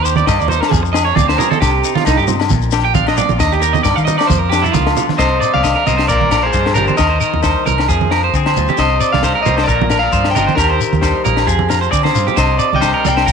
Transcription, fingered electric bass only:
0.00 0.22 D#2 loud
0.28 0.38 G2 medium
0.41 0.60 D#2 medium
0.73 1.12 F2 loud
1.18 1.37 D2 medium
1.62 1.81 C2 medium
2.07 2.17 C2 medium
2.19 2.47 G2 medium
2.51 3.20 A#1 medium
3.30 3.39 A#1 medium
3.40 3.79 D#2 loud
3.85 3.96 G2 loud
3.97 4.17 D#3 medium
4.30 4.69 F2 loud
4.75 4.94 C#2 loud
5.19 5.39 C2 medium
5.55 5.74 C2 medium
5.87 6.06 C2 medium
6.10 6.49 A#1 medium
6.54 6.74 G2 medium
6.78 6.88 G1 medium
7.00 7.19 D#2 medium
7.34 7.54 D#2 medium
7.68 7.87 C2 medium
7.90 8.28 F2 medium
8.34 8.54 D3 medium
8.57 8.67 D2 medium
8.79 8.99 C2 medium
9.14 9.33 C2 medium
9.48 9.67 C2 medium
9.68 10.07 A#1 medium
10.14 10.33 G2 medium
10.36 10.47 G1 medium
10.58 10.78 D#2 medium
10.93 11.12 D#2 medium
11.26 11.46 A#1 medium
11.48 11.87 F2 medium
11.94 12.13 D3 medium
12.16 12.26 G2 medium
12.38 12.57 C2 medium
12.73 12.92 C2 medium
13.06 13.25 C2 medium
13.28 13.32 A#1 medium

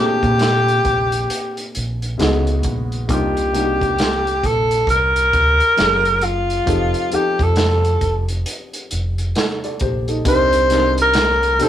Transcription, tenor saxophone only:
0.00 1.71 G4 medium
3.13 4.47 G4 medium
4.45 4.89 A4 medium
4.90 6.25 A#4 medium
6.24 7.16 F4 medium
7.14 7.44 G4 medium
7.43 8.31 A4 medium
10.28 10.95 C5 loud
11.02 11.65 A#4 loud
11.63 11.69 A4 loud

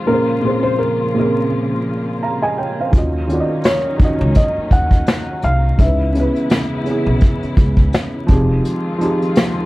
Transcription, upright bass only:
2.93 3.39 D#2 medium
4.21 4.33 C#2 medium
4.57 muted upright bass stroke soft
4.71 5.01 D#2 medium
5.43 5.73 C2 medium
5.79 6.25 C#2 medium
7.06 7.19 B1 medium
7.43 muted upright bass stroke soft
7.57 7.87 C#2 medium
8.29 8.58 F1 medium

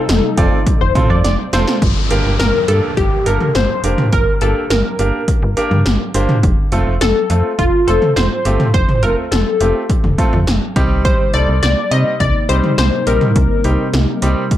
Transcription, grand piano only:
0.38 0.58 C4 medium
0.38 0.58 F4 medium
0.38 0.58 A4 medium
0.38 0.58 D5 loud
0.95 1.16 C4 medium
0.95 1.16 F4 medium
0.95 1.16 A4 medium
0.95 1.16 C5 medium
1.53 1.74 C4 medium
1.53 1.74 F4 medium
1.53 1.74 A4 medium
1.53 1.74 C5 loud
2.11 2.32 A#3 medium
2.11 2.31 D4 medium
2.11 2.32 G4 medium
2.11 2.31 A#4 loud
2.68 2.89 A#3 medium
2.68 2.89 D4 medium
2.68 2.89 G4 medium
2.68 2.89 A#4 medium
3.26 3.47 A#3 medium
3.26 3.47 D4 medium
3.26 3.47 G4 medium
3.26 3.47 A4 medium
3.84 4.05 A#3 medium
3.84 4.05 D4 medium
3.84 4.05 G4 medium
3.84 4.05 A#4 medium
4.42 4.62 A#3 medium
4.42 4.62 D4 medium
4.42 4.62 G4 medium
4.42 4.62 A#4 medium
4.99 5.20 A#3 medium
4.99 5.20 D4 medium
4.99 5.20 G4 medium
4.99 5.20 A#4 medium
5.57 5.78 A#3 medium
5.57 5.78 D4 medium
5.57 5.78 G4 medium
5.57 5.78 A#4 medium
6.14 6.35 A#3 medium
6.14 6.35 D4 medium
6.14 6.35 G4 medium
6.14 6.35 C5 loud
6.72 6.93 A3 medium
6.72 6.93 C4 medium
6.72 6.93 F4 medium
6.72 6.93 A4 loud
7.30 7.51 A3 medium
7.30 7.51 C4 medium
7.30 7.51 F4 medium
7.30 7.51 A4 medium
7.88 8.08 A3 medium
7.88 8.08 C4 medium
7.88 8.08 F4 medium
7.88 8.08 C5 medium
8.45 8.66 A3 medium
8.45 8.66 C4 medium
8.45 8.66 F4 medium
8.45 8.66 G4 medium
9.03 9.24 A3 medium
9.03 9.24 C4 medium
9.03 9.24 F4 medium
9.03 9.24 A4 medium
9.61 9.81 A3 medium
9.61 9.81 C4 medium
9.61 9.81 F4 medium
9.61 9.81 G4 medium
10.18 10.39 A3 medium
10.18 10.39 C4 medium
10.18 10.39 F4 medium
10.18 10.39 A4 loud
10.76 11.22 G3 medium
10.76 11.22 C4 medium
10.76 11.22 D#4 medium
10.76 11.22 G4 loud
11.34 11.55 G3 medium
11.34 11.55 C4 medium
11.34 11.55 D#4 medium
11.34 11.55 A4 medium
11.91 12.12 G3 medium
11.91 12.12 C4 medium
11.91 12.12 D#4 medium
11.91 12.12 G4 medium
12.49 12.70 G3 medium
12.49 12.70 C4 medium
12.49 12.70 D#4 medium
12.49 12.70 G4 medium
13.07 13.28 G3 medium
13.07 13.28 C4 medium
13.07 13.28 D#4 medium
13.07 13.28 G4 medium
13.65 13.85 G3 medium
13.65 13.85 C4 medium
13.65 13.85 D#4 medium
13.65 13.85 G4 medium
14.22 14.43 G3 medium
14.22 14.43 C4 medium
14.22 14.43 D#4 medium
14.22 14.43 G4 loud

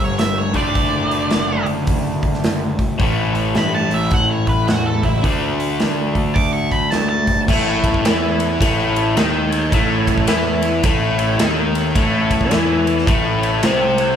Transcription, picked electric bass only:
0.00 0.17 G1 medium
0.20 0.53 G1 medium
0.55 0.75 F#1 medium
0.76 1.29 F#1 medium
1.32 1.65 F#1 loud
1.67 1.87 F#1 medium
1.88 2.41 F#1 medium
2.44 2.77 F#1 medium
2.79 2.99 F#1 medium
3.00 3.33 A1 medium
3.35 3.55 A1 medium
3.55 3.89 G2 loud
3.91 4.11 A1 medium
4.12 4.65 A1 medium
4.68 5.01 E2 medium
5.04 5.23 C#2 medium
5.25 5.77 D2 medium
5.81 6.14 D2 medium
6.16 6.35 D2 medium
6.36 6.89 D2 medium
6.94 7.26 D2 medium
7.27 7.47 G1 medium
7.48 8.00 A1 medium
8.05 8.56 E2 loud
8.61 9.13 A1 medium
9.17 9.68 D#2 medium
9.73 10.25 A1 medium
10.28 10.80 E2 medium
10.84 11.36 A1 loud
11.39 11.91 D#2 medium
11.96 12.48 A1 medium
12.52 13.04 E2 loud
13.08 13.60 A1 medium
13.63 14.15 C2 loud

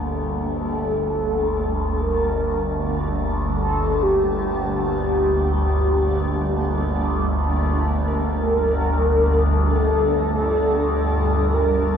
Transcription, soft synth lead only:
0.03 2.03 A4 medium
2.01 3.02 A#4 loud
3.55 4.04 A4 loud
4.02 5.03 G4 loud
5.04 7.50 G4 medium
8.04 9.55 A#4 loud
9.53 11.55 A4 loud
11.54 11.97 A#4 medium

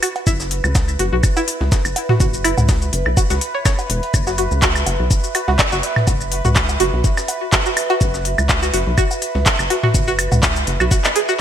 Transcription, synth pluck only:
0.03 0.08 F#4 medium
0.27 0.33 E4 loud
0.99 1.05 F#4 medium
1.13 1.17 F#4 medium
1.37 1.42 E4 loud
2.09 2.14 F#4 medium
2.20 2.26 F#4 medium
2.44 2.50 E4 loud
3.17 3.23 F#4 medium
3.30 3.35 F#4 medium
3.54 3.59 C#5 medium
3.66 3.71 C#5 medium
4.27 4.32 F#4 medium
4.38 4.44 F#4 medium
4.62 4.68 F#4 loud
5.35 5.41 F#4 medium
5.48 5.53 F#4 medium
5.72 5.77 F#4 loud
6.45 6.50 F#4 medium
6.56 6.62 F#4 medium
6.80 6.86 F#4 loud
7.53 7.58 F#4 medium
7.66 7.71 F#4 medium
7.90 7.95 F#4 loud
8.62 8.67 F#4 medium
8.74 8.79 F#4 medium
8.98 9.03 F#4 loud
9.70 9.76 F#4 medium
9.83 9.88 F#4 medium
10.08 10.12 F#4 loud
10.80 10.85 F#4 medium
10.91 10.97 F#4 medium
11.15 11.19 G#4 medium
11.29 11.33 F#4 loud

